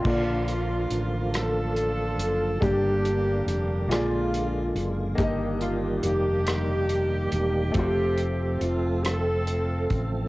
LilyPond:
<<
  \new Staff \with { instrumentName = "Alto saxophone" } { \time 6/8 \key bes \major \tempo 4. = 47 f'4. a'4. | g'4 g'8 f'4 r8 | r8 f'8 g'2 | g'4 f'8 a'4 r8 | }
  \new Staff \with { instrumentName = "Grand piano" } { \time 6/8 \key bes \major << { <g'' c'''>16 r2 r8. | r2. | r2. | r2. | } \\ { <bes d' f' d''>2. | <bes d' g' d''>4. <bes f' aes' d''>4. | <bes ees' g' ees''>2. | <a c' f' c''>2. | } >> }
  \new Staff \with { instrumentName = "Grand piano" } { \clef bass \time 6/8 \key bes \major d4. r4. | g,4. bes,4. | g,4. r4. | r2. | }
  \new Staff \with { instrumentName = "Saxophone section" } { \time 6/8 \key bes \major << { f'4. a'4. | g'4 r8 f'4 r8 | r8 f'8 g'2 | g'4 f'8 a'4 r8 | } \\ { <bes d'>4. <d' f'>4. | <bes d'>4. <aes d'>4. | r4 <bes ees'>2 | c'4. <c' f'>4. | } >> }
  \new Staff \with { instrumentName = "Tonewheel organ" } { \time 6/8 \key bes \major f''16 r2 r8. | r2. | r2. | r2. | }
  \new Staff \with { instrumentName = "Tonewheel organ" } { \time 6/8 \key bes \major <d f bes f'>2. | <d g bes g'>4. <d aes bes ees' f'>4. | <ees g bes f' g'>2. | <f a c' g' a'>2. | }
  \new Staff \with { instrumentName = "Fingered electric bass" } { \clef bass \time 6/8 \key bes \major bes,,4 a,,4. ges,,8 | g,,4 f,,8 bes,,4 ges,,8 | g,,4 f,,4. e,,8 | f,,4 f,,4. a,,8 | }
  \new DrumStaff \with { instrumentName = "Drums" } \drummode { \time 6/8 <cymc bd>8 hh8 hh8 <hh ss>8 hh8 hh8 | <hh bd>8 hh8 hh8 <hh ss>8 hh8 hh8 | <hh bd>8 hh8 hh8 <hh ss>8 hh8 hh8 | <hh bd>8 hh8 hh8 <hh ss>8 hh8 <hh bd>8 | }
>>